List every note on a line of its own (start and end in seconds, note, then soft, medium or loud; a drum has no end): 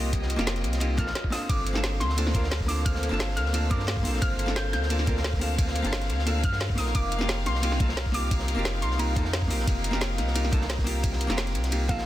0.00 0.37 C2 medium
0.00 0.35 A#3 medium
0.00 1.45 A#3 medium
0.00 0.36 C4 medium
0.00 0.37 F4 medium
0.00 1.45 F4 medium
0.00 0.38 G4 medium
0.00 1.45 D#5 loud
0.13 kick loud
0.13 closed hi-hat loud
0.13 ride medium
0.22 snare medium
0.30 closed hi-hat medium
0.30 ride medium
0.36 0.66 F1 medium
0.36 0.78 A#3 loud
0.36 0.78 C4 medium
0.36 0.79 F4 medium
0.36 snare medium
0.36 closed hi-hat soft
0.41 0.80 G4 loud
0.47 snare loud
0.47 closed hi-hat loud
0.47 ride medium
0.55 snare medium
0.55 closed hi-hat soft
0.64 1.00 C2 medium
0.64 closed hi-hat medium
0.64 ride medium
0.73 snare soft
0.73 closed hi-hat soft
0.80 0.96 A#3 medium
0.80 0.96 C4 medium
0.80 0.96 D#4 medium
0.80 0.96 F4 medium
0.80 0.97 G4 medium
0.80 closed hi-hat loud
0.80 ride loud
0.97 1.14 A#1 loud
0.97 1.09 A#3 medium
0.97 1.10 C4 medium
0.97 1.10 D#4 medium
0.97 1.10 F4 medium
0.97 1.10 A4 loud
0.97 1.33 F6 loud
0.97 kick loud
0.97 closed hi-hat medium
0.97 ride medium
1.07 snare medium
1.15 snare loud
1.15 closed hi-hat medium
1.15 ride medium
1.24 kick medium
1.30 1.72 A#3 medium
1.30 1.73 C4 medium
1.30 1.73 D4 medium
1.30 1.74 F4 medium
1.30 1.50 D#6 medium
1.30 snare loud
1.30 open hi-hat medium
1.30 ride medium
1.35 1.74 A4 medium
1.49 2.02 G1 loud
1.49 6.91 A#3 medium
1.49 6.91 A4 medium
1.49 6.91 C5 medium
1.49 12.06 F5 loud
1.49 2.02 D6 loud
1.49 kick loud
1.49 closed hi-hat loud
1.49 ride medium
1.66 closed hi-hat medium
1.66 ride medium
1.73 2.14 A#3 medium
1.73 2.15 C4 medium
1.73 2.15 D4 medium
1.73 2.16 F4 medium
1.73 snare medium
1.77 2.17 A4 loud
1.84 snare loud
1.84 closed hi-hat loud
1.84 ride medium
2.00 3.10 D2 medium
2.00 2.71 C6 loud
2.00 snare soft
2.00 closed hi-hat medium
2.00 ride medium
2.09 snare medium
2.16 2.32 A#3 medium
2.16 2.32 C4 medium
2.16 2.33 D4 medium
2.16 2.33 F4 medium
2.16 2.33 A4 medium
2.16 closed hi-hat loud
2.16 ride medium
2.27 snare soft
2.34 2.46 A#3 loud
2.34 2.46 C4 medium
2.34 2.46 D4 medium
2.34 2.47 F4 medium
2.34 2.47 A#4 loud
2.34 kick loud
2.34 closed hi-hat medium
2.34 ride medium
2.44 snare medium
2.51 snare loud
2.51 closed hi-hat medium
2.51 ride medium
2.60 kick medium
2.60 snare medium
2.66 3.08 A#3 medium
2.66 3.09 C4 medium
2.66 3.09 D4 medium
2.66 3.10 F4 medium
2.66 2.76 D6 loud
2.66 open hi-hat medium
2.66 ride medium
2.71 3.11 A4 loud
2.86 3.33 F6 loud
2.86 kick loud
2.86 closed hi-hat loud
2.86 ride medium
2.95 snare medium
3.03 closed hi-hat medium
3.03 ride medium
3.09 3.38 G1 medium
3.09 3.51 A#3 loud
3.09 3.51 C4 medium
3.09 3.52 D4 medium
3.09 3.52 F4 medium
3.13 3.53 A4 loud
3.20 snare loud
3.20 closed hi-hat medium
3.20 ride medium
3.29 snare medium
3.37 3.72 D2 medium
3.37 3.68 F6 loud
3.37 closed hi-hat medium
3.37 ride medium
3.46 snare soft
3.53 3.68 A#3 medium
3.53 3.68 C4 medium
3.53 3.69 D4 medium
3.53 3.69 F4 medium
3.53 3.69 A4 medium
3.53 closed hi-hat loud
3.53 ride medium
3.70 4.06 G2 medium
3.70 3.82 A#3 loud
3.70 3.82 C4 medium
3.70 3.83 D4 medium
3.70 3.83 F4 medium
3.70 3.83 A#4 loud
3.70 4.23 D6 loud
3.70 kick loud
3.70 closed hi-hat medium
3.70 ride medium
3.80 snare medium
3.87 snare loud
3.87 closed hi-hat medium
3.87 ride medium
3.97 kick medium
3.97 snare soft
4.03 4.20 A#1 medium
4.03 4.45 A#3 medium
4.03 4.45 C4 medium
4.03 4.46 D4 medium
4.03 4.46 F4 medium
4.03 snare soft
4.03 open hi-hat medium
4.03 ride medium
4.07 4.47 A4 medium
4.13 snare soft
4.21 4.75 G1 loud
4.21 4.57 F6 loud
4.21 kick loud
4.21 closed hi-hat medium
4.21 ride loud
4.21 ride medium
4.39 closed hi-hat medium
4.39 ride medium
4.46 4.87 A#3 loud
4.46 4.88 C4 medium
4.46 4.88 D4 medium
4.46 4.89 F4 medium
4.46 snare medium
4.50 4.89 A4 loud
4.56 4.72 G6 loud
4.56 snare loud
4.56 closed hi-hat medium
4.56 ride medium
4.73 5.83 D2 medium
4.73 5.37 G6 loud
4.73 snare soft
4.73 closed hi-hat medium
4.73 ride medium
4.83 snare medium
4.89 5.05 A#3 medium
4.89 5.05 C4 medium
4.89 5.05 D4 medium
4.89 5.06 F4 medium
4.89 5.06 A4 medium
4.89 closed hi-hat loud
4.89 ride medium
4.99 snare soft
5.06 5.18 A#3 loud
5.06 5.19 C4 medium
5.06 5.19 D4 medium
5.06 5.19 F4 medium
5.06 5.20 A#4 loud
5.06 kick loud
5.06 closed hi-hat medium
5.06 ride medium
5.17 snare medium
5.24 snare loud
5.24 closed hi-hat medium
5.24 ride medium
5.33 kick medium
5.33 snare medium
5.39 5.81 A#3 medium
5.39 5.82 C4 medium
5.39 5.82 D4 medium
5.39 5.83 F4 medium
5.39 open hi-hat medium
5.39 ride medium
5.44 5.83 A4 medium
5.58 kick loud
5.58 closed hi-hat medium
5.58 ride medium
5.67 snare medium
5.76 closed hi-hat medium
5.76 ride medium
5.82 6.11 G1 medium
5.82 6.24 A#3 loud
5.82 6.24 C4 medium
5.82 6.25 D4 medium
5.82 6.25 F4 medium
5.82 closed hi-hat soft
5.86 6.26 A4 loud
5.92 snare loud
5.92 closed hi-hat medium
5.92 ride loud
5.92 ride medium
6.02 snare soft
6.02 closed hi-hat soft
6.10 6.45 D2 medium
6.10 closed hi-hat medium
6.10 ride medium
6.19 snare soft
6.25 6.41 A#3 medium
6.25 6.41 C4 medium
6.25 6.42 D4 medium
6.25 6.42 F4 medium
6.25 6.42 A4 medium
6.25 closed hi-hat medium
6.25 ride medium
6.44 6.79 G2 medium
6.44 6.79 F6 loud
6.44 kick loud
6.44 closed hi-hat medium
6.44 ride medium
6.53 snare medium
6.60 snare loud
6.60 closed hi-hat medium
6.60 ride loud
6.60 ride medium
6.69 kick medium
6.69 snare soft
6.75 6.93 A#1 medium
6.75 7.17 A#3 medium
6.75 7.18 C4 medium
6.75 7.18 D#4 medium
6.75 7.19 F4 medium
6.75 6.96 D#6 loud
6.75 snare soft
6.75 open hi-hat medium
6.75 ride medium
6.80 7.20 A#4 loud
6.86 snare soft
6.95 7.48 F1 loud
6.95 12.06 D#4 medium
6.95 12.06 A#4 medium
6.95 7.48 D6 loud
6.95 kick loud
6.95 closed hi-hat medium
6.95 ride medium
7.12 closed hi-hat medium
7.12 ride medium
7.18 7.60 A#3 loud
7.18 7.60 C4 medium
7.18 7.61 F4 medium
7.18 snare medium
7.23 7.62 G4 loud
7.29 snare loud
7.29 closed hi-hat medium
7.29 ride medium
7.29 ride loud
7.46 8.56 C2 medium
7.46 8.10 C6 loud
7.46 snare soft
7.46 closed hi-hat medium
7.46 ride medium
7.55 snare medium
7.62 7.77 A#3 medium
7.62 7.78 C4 medium
7.62 7.78 D#4 medium
7.62 7.78 F4 medium
7.62 7.79 G4 medium
7.62 closed hi-hat medium
7.62 ride medium
7.72 snare soft
7.79 7.91 A#3 medium
7.79 7.92 C4 medium
7.79 7.92 D#4 medium
7.79 7.92 F4 medium
7.79 7.92 A4 loud
7.79 kick loud
7.79 closed hi-hat medium
7.79 ride medium
7.89 snare medium
7.97 snare loud
7.97 closed hi-hat medium
7.97 ride medium
8.06 kick medium
8.06 snare medium
8.12 8.53 A#3 medium
8.12 8.54 C4 medium
8.12 8.55 F4 medium
8.12 8.78 D6 loud
8.12 open hi-hat medium
8.12 ride medium
8.16 8.56 G4 medium
8.31 kick loud
8.31 closed hi-hat loud
8.31 ride medium
8.39 snare medium
8.48 closed hi-hat medium
8.48 ride medium
8.55 8.84 F1 medium
8.55 8.96 A#3 loud
8.55 8.97 C4 medium
8.55 8.98 F4 medium
8.59 8.98 G4 loud
8.65 snare loud
8.65 closed hi-hat medium
8.65 ride medium
8.74 snare soft
8.82 9.18 C2 medium
8.82 8.98 C6 loud
8.82 closed hi-hat medium
8.82 ride medium
8.91 snare soft
8.98 9.14 A#3 medium
8.98 9.14 C4 medium
8.98 9.14 D#4 medium
8.98 9.15 F4 medium
8.98 9.15 G4 medium
8.98 12.02 A#5 medium
8.98 closed hi-hat loud
8.98 ride medium
9.15 9.52 F2 medium
9.15 9.27 A#3 loud
9.15 9.28 C4 medium
9.15 9.28 D#4 medium
9.15 9.28 F4 medium
9.15 9.28 A4 loud
9.15 kick loud
9.15 closed hi-hat medium
9.15 ride medium
9.25 snare medium
9.33 snare loud
9.33 closed hi-hat medium
9.33 ride medium
9.42 kick medium
9.42 snare soft
9.48 9.66 A#1 medium
9.48 9.90 A#3 medium
9.48 9.91 C4 medium
9.48 9.92 F4 medium
9.48 snare soft
9.48 open hi-hat medium
9.48 ride medium
9.52 9.92 G4 loud
9.60 snare soft
9.67 10.20 F1 loud
9.67 kick loud
9.67 closed hi-hat loud
9.67 ride medium
9.84 closed hi-hat medium
9.84 ride medium
9.91 10.32 A#3 loud
9.91 10.33 C4 medium
9.91 10.34 F4 medium
9.91 snare medium
9.95 10.35 G4 loud
10.01 snare loud
10.01 closed hi-hat loud
10.01 ride medium
10.18 11.28 C2 medium
10.18 snare soft
10.18 closed hi-hat medium
10.18 ride medium
10.28 snare soft
10.34 10.50 A#3 medium
10.34 10.50 C4 medium
10.34 10.51 D#4 medium
10.34 10.51 F4 medium
10.34 10.51 G4 medium
10.34 closed hi-hat loud
10.34 ride medium
10.44 snare soft
10.51 10.64 A#3 medium
10.51 10.64 C4 medium
10.51 10.64 D#4 medium
10.51 10.64 F4 medium
10.51 10.65 A4 loud
10.51 kick loud
10.51 closed hi-hat medium
10.51 ride medium
10.61 snare medium
10.69 snare loud
10.69 closed hi-hat medium
10.69 ride medium
10.78 kick medium
10.78 snare medium
10.84 11.26 A#3 medium
10.84 11.27 C4 medium
10.84 11.28 F4 medium
10.84 open hi-hat medium
10.84 ride medium
10.89 11.29 G4 medium
11.03 kick loud
11.03 closed hi-hat loud
11.03 ride medium
11.13 snare medium
11.21 closed hi-hat medium
11.21 ride medium
11.27 11.56 F1 medium
11.27 11.69 A#3 loud
11.27 11.69 C4 medium
11.27 11.70 F4 medium
11.27 snare medium
11.27 closed hi-hat soft
11.31 11.71 G4 loud
11.37 snare loud
11.37 closed hi-hat loud
11.37 ride medium
11.46 snare soft
11.46 closed hi-hat soft
11.55 11.91 C2 medium
11.55 closed hi-hat medium
11.55 ride medium
11.64 snare soft
11.64 closed hi-hat soft
11.71 11.86 A#3 medium
11.71 11.87 C4 medium
11.71 11.87 D#4 medium
11.71 11.87 F4 medium
11.71 11.87 G4 medium
11.71 closed hi-hat loud
11.71 ride medium
11.88 12.04 A#1 loud
11.88 12.00 A#3 medium
11.88 12.00 C4 medium
11.88 12.01 D#4 medium
11.88 12.01 F4 medium
11.88 12.01 A4 loud
11.88 12.06 F5 loud
11.88 kick loud
11.88 closed hi-hat medium
11.88 ride medium
11.98 snare medium